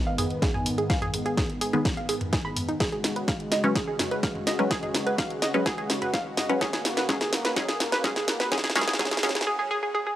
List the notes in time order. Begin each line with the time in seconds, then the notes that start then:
Already playing: G#2 D#3 B3
0.07 F5
0.18 G#4, mid tom, open hi-hat
0.30 closed hi-hat
0.42 G#4, kick, snare, closed hi-hat
0.54 G#5, mid tom
0.66 open hi-hat
0.78 G#4, closed hi-hat
0.90 F5, kick, snare, closed hi-hat
1.02 G#4, closed hi-hat, mid tom
1.14 open hi-hat
1.26 G#4, closed hi-hat
1.37 G#4, kick, snare, closed hi-hat
1.50 closed hi-hat
1.61 G#4, open hi-hat
1.73 D#3 G#3 B3 G#4, closed hi-hat
1.85 kick, snare, closed hi-hat
1.97 F5, closed hi-hat
2.09 G#4, open hi-hat
2.21 closed hi-hat, mid tom
2.33 G#4, kick, snare, closed hi-hat
2.45 B5
2.56 mid tom, open hi-hat
2.69 D#4, closed hi-hat
2.80 C#3 G#3 F#4 G#4, kick, snare, closed hi-hat
2.92 G#4, closed hi-hat
3.04 snare, open hi-hat
3.16 B4, closed hi-hat
3.28 F5, kick, snare, closed hi-hat
3.40 closed hi-hat
3.52 D#5, snare, open hi-hat
3.64 F#3 G#3 C#4 B4, closed hi-hat
3.75 G#4, kick, snare, closed hi-hat
3.88 G#4
3.99 snare, mid tom, open hi-hat
4.11 B4, closed hi-hat
4.23 F5, kick, snare, closed hi-hat
4.35 mid tom
4.47 D#5, snare, open hi-hat
4.59 F#3 G#3 C#4 B4, closed hi-hat
4.71 G#4, kick, snare, closed hi-hat
4.83 G#4, closed hi-hat, mid tom
4.95 snare, open hi-hat
5.07 B4, closed hi-hat
5.18 F5, kick, snare, closed hi-hat
5.30 closed hi-hat
5.42 D#5, snare, open hi-hat
5.54 F#3 G#3 C#4 B4, closed hi-hat
5.66 G#4, kick, snare, closed hi-hat
5.78 G#4, closed hi-hat
5.90 snare, open hi-hat
6.02 B4, closed hi-hat, mid tom
6.14 F5, kick, snare, closed hi-hat
6.37 D#5, snare, mid tom, open hi-hat
6.49 F#3 G#3 C#4 B4, closed hi-hat
6.61 F#3 G#3 A#3 C#4 G#4, kick, snare, closed hi-hat
6.73 G#4, snare, closed hi-hat
6.85 snare, open hi-hat
6.97 B4, snare, closed hi-hat
7.09 F#3 G#3 C#4 G#4, kick, snare, closed hi-hat
7.21 G#4, snare, closed hi-hat
7.33 snare, open hi-hat
7.45 B4, snare, closed hi-hat
7.56 F#3 G#3 C#4 G#4, kick, snare, closed hi-hat
7.68 G#4, snare
7.80 snare, mid tom, open hi-hat
7.92 B4, snare, closed hi-hat
8.04 F#3 G#3 C#4 G#4, kick, snare, closed hi-hat
8.16 G#4, snare, mid tom
8.28 snare, open hi-hat
8.40 B4, snare, closed hi-hat
8.52 F#3 G#3 C#4 G#4, kick, snare, closed hi-hat
8.58 snare
8.64 G#4, snare, closed hi-hat, mid tom
8.70 snare
8.75 F#3 G#3 C#4 G#4, snare, open hi-hat
8.82 snare
8.88 G#4, snare, closed hi-hat
8.93 snare
8.99 F#3 G#3 C#4 G#4, kick, snare, closed hi-hat
9.05 snare
9.11 G#4, snare, closed hi-hat
9.17 snare
9.23 F#3 G#3 C#4 G#4, snare, open hi-hat
9.29 snare
9.35 G#4, snare, closed hi-hat
9.41 snare
9.47 G#4
9.59 G#4
9.71 G#4
9.83 G#4
9.95 G#4
10.07 G#4